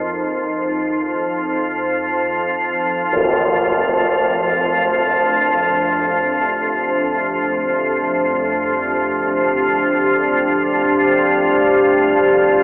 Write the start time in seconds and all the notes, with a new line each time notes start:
Already playing: F2 F3 D#4 A#4
3.12 A3, tam-tam
4.72 D4
5.86 G4
7.25 C5